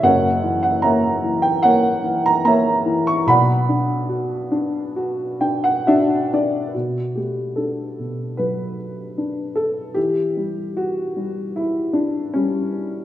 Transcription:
0.03 F#1 F#2 A#4 C#5 F#5
0.44 E3
0.63 F#5
0.82 A#3 C#5 E5 A#5
1.24 E3
1.42 G5
1.63 A#3 A#4 C#5 F#5
2.04 E3
2.26 A#5
2.45 A#3 C#5 E5 A#5
2.86 E3
3.07 C#6
3.26 B1 B2 D5 F#5 B5
3.69 D4
4.09 F#4
4.52 D4
4.96 F#4
5.41 D4 G5
5.64 F#5
5.87 D4 F#4 E5
6.33 D4 D5
6.74 B2 F#4
7.15 A3 G4
7.56 D4 A4
7.99 B2
8.37 F#3 B4
9.18 D4
9.56 A4
9.94 E3 G4
10.37 G3
10.77 F#4
11.16 G3
11.56 E4
11.93 D4
12.34 G3 C#4

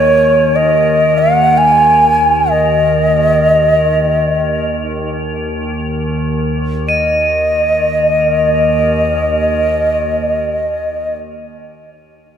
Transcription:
Already playing: D#2 D#3 C#5 D#7
0.56 D#5
1.18 F#5
1.58 G#5
2.52 D#5
6.87 D#2 D#3 D#5 D#7

